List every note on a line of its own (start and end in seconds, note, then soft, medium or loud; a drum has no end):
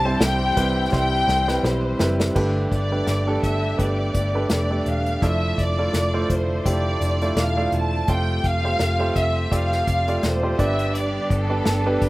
0.00 0.15 C2 loud
0.00 0.53 G2 medium
0.00 2.32 E3 medium
0.00 0.05 G3 medium
0.00 2.34 G3 medium
0.00 0.05 C4 medium
0.00 2.34 C4 medium
0.00 0.05 E4 medium
0.00 2.32 G4 medium
0.00 0.06 C5 medium
0.00 0.18 A5 loud
0.05 0.51 G3 medium
0.05 0.51 C4 medium
0.05 0.51 E4 medium
0.05 0.51 C5 medium
0.20 0.50 C2 medium
0.20 0.93 G5 medium
0.20 snare medium
0.20 closed hi-hat medium
0.56 0.87 C2 medium
0.56 0.88 G3 medium
0.56 0.88 C4 medium
0.56 0.88 E4 medium
0.56 0.89 B4 medium
0.56 kick medium
0.56 closed hi-hat medium
0.92 1.22 C2 loud
0.92 1.40 G3 medium
0.92 1.40 C4 medium
0.92 1.40 E4 medium
0.92 1.41 C5 medium
0.92 1.61 G5 loud
0.92 kick medium
0.92 snare medium
1.28 1.58 C2 medium
1.28 snare medium
1.48 1.94 G3 medium
1.48 1.94 C4 medium
1.48 1.94 E4 medium
1.48 1.94 B4 medium
1.48 snare medium
1.63 1.93 B1 medium
1.63 2.21 C5 medium
1.63 snare medium
1.99 2.29 F#1 medium
1.99 2.32 G3 medium
1.99 2.32 C4 medium
1.99 2.32 E4 medium
1.99 2.32 B4 medium
1.99 snare medium
2.20 snare loud
2.35 2.65 G1 medium
2.35 3.39 G2 medium
2.35 3.39 D3 medium
2.35 5.19 D3 medium
2.35 2.83 A3 medium
2.35 10.55 A3 medium
2.35 5.19 B3 soft
2.35 2.83 D4 medium
2.35 2.84 G4 medium
2.35 5.20 G4 medium
2.35 2.84 B4 medium
2.35 kick medium
2.35 crash medium
2.72 3.01 G1 medium
2.72 3.40 D5 medium
2.72 kick medium
2.72 closed hi-hat medium
2.92 3.22 A3 medium
2.92 3.22 D4 medium
2.92 3.22 G4 medium
2.92 3.23 B4 medium
3.07 3.37 G1 medium
3.07 snare medium
3.07 closed hi-hat medium
3.27 3.73 A3 medium
3.27 3.73 D4 medium
3.27 3.73 G4 medium
3.27 3.73 A4 medium
3.43 3.73 G1 medium
3.43 3.80 E5 medium
3.43 kick medium
3.43 closed hi-hat medium
3.78 4.09 G1 medium
3.78 4.26 A3 medium
3.78 4.26 D4 medium
3.78 4.27 G4 medium
3.78 4.27 B4 medium
3.78 4.52 D5 medium
3.78 kick medium
3.78 closed hi-hat medium
4.14 4.44 G1 medium
4.14 kick medium
4.14 closed hi-hat medium
4.35 4.65 A3 medium
4.35 4.65 D4 medium
4.35 4.65 G4 medium
4.35 4.66 B4 medium
4.50 4.80 F1 medium
4.50 4.85 D5 medium
4.50 snare loud
4.50 closed hi-hat medium
4.71 5.16 A3 medium
4.71 5.16 D4 medium
4.71 5.16 G4 medium
4.71 5.16 D5 medium
4.86 5.16 E1 medium
4.86 5.23 F5 medium
4.86 closed hi-hat medium
5.06 closed hi-hat medium
5.20 5.52 F1 medium
5.20 8.05 D3 medium
5.20 8.05 F3 medium
5.20 6.26 F3 medium
5.20 5.70 A3 medium
5.20 8.05 D4 medium
5.20 5.70 E4 medium
5.20 5.70 F4 medium
5.20 5.70 D5 medium
5.20 5.59 E5 medium
5.20 kick medium
5.20 closed hi-hat medium
5.58 5.87 F1 medium
5.58 6.31 D5 medium
5.58 kick medium
5.58 closed hi-hat medium
5.78 6.09 A3 medium
5.78 6.09 E4 medium
5.78 6.09 F4 medium
5.78 6.09 D5 medium
5.93 6.23 F1 medium
5.93 snare medium
5.93 closed hi-hat medium
6.14 6.59 A3 medium
6.14 6.59 E4 medium
6.14 6.59 F4 medium
6.14 6.59 C5 medium
6.30 6.59 F1 medium
6.30 6.67 C5 medium
6.30 kick medium
6.30 closed hi-hat medium
6.65 6.95 F1 medium
6.65 7.13 A3 medium
6.65 7.13 E4 medium
6.65 7.13 F4 medium
6.65 7.13 G4 medium
6.65 7.38 D5 medium
6.65 kick medium
6.65 closed hi-hat medium
7.01 7.30 F1 medium
7.01 closed hi-hat medium
7.21 7.52 A3 medium
7.21 7.52 E4 medium
7.21 7.52 F4 medium
7.21 7.52 D5 medium
7.21 closed hi-hat soft
7.36 7.66 E1 medium
7.36 7.74 F5 medium
7.36 snare loud
7.36 closed hi-hat medium
7.57 8.02 A3 medium
7.57 8.02 E4 medium
7.57 8.02 F4 medium
7.57 8.02 D5 medium
7.72 8.02 E1 medium
7.72 8.10 A5 medium
7.72 closed hi-hat medium
8.08 8.38 F1 medium
8.08 10.57 C3 medium
8.08 9.12 C3 medium
8.08 12.09 G3 medium
8.08 8.57 A3 medium
8.08 10.57 F4 medium
8.08 8.57 F4 medium
8.08 8.57 G4 medium
8.08 8.57 C5 medium
8.08 8.46 G5 medium
8.08 kick medium
8.08 closed hi-hat medium
8.44 8.74 F1 medium
8.44 9.17 F5 loud
8.44 kick medium
8.44 closed hi-hat medium
8.64 8.95 A3 medium
8.64 8.95 F4 medium
8.64 8.95 G4 medium
8.64 8.95 C5 medium
8.79 9.10 F1 medium
8.79 snare medium
8.79 closed hi-hat medium
8.99 9.45 A3 medium
8.99 9.45 F4 medium
8.99 9.45 G4 medium
8.99 9.45 C5 medium
9.16 9.45 F1 medium
9.16 9.53 E5 medium
9.16 kick medium
9.16 closed hi-hat medium
9.51 9.81 F1 medium
9.51 9.99 A3 medium
9.51 9.99 F4 medium
9.51 9.99 G4 medium
9.51 9.99 D5 medium
9.51 10.25 F5 medium
9.51 kick medium
9.51 closed hi-hat medium
9.72 snare soft
9.87 10.17 F1 medium
9.87 kick medium
9.87 closed hi-hat medium
10.08 10.38 A3 medium
10.08 10.38 F4 medium
10.08 10.38 G4 medium
10.08 10.38 D5 medium
10.08 closed hi-hat soft
10.23 10.53 E1 medium
10.23 10.61 C5 medium
10.23 snare medium
10.23 closed hi-hat medium
10.43 10.59 A3 medium
10.43 10.59 F4 medium
10.43 10.58 G4 medium
10.43 10.59 C5 medium
10.57 11.18 G1 medium
10.57 11.62 G2 medium
10.57 11.62 D3 medium
10.57 12.09 B3 medium
10.57 11.37 B3 medium
10.57 12.09 D4 medium
10.57 11.37 D4 medium
10.57 12.09 G4 medium
10.57 11.37 G4 medium
10.57 11.37 D5 medium
10.57 kick medium
10.57 closed hi-hat medium
10.62 10.96 E5 medium
10.79 closed hi-hat medium
10.95 11.31 D5 medium
10.95 closed hi-hat medium
11.30 11.60 G1 medium
11.30 12.03 A4 medium
11.30 kick medium
11.30 closed hi-hat medium
11.50 11.80 B3 medium
11.50 11.80 D4 medium
11.50 11.81 G4 medium
11.50 11.81 D5 medium
11.65 11.96 G1 medium
11.65 snare medium
11.65 closed hi-hat medium
11.86 12.09 B3 medium
11.86 12.09 D4 medium
11.86 12.09 G4 medium
11.86 12.09 B4 medium
12.02 12.09 G1 medium
12.02 12.09 B4 medium
12.02 kick medium
12.02 closed hi-hat medium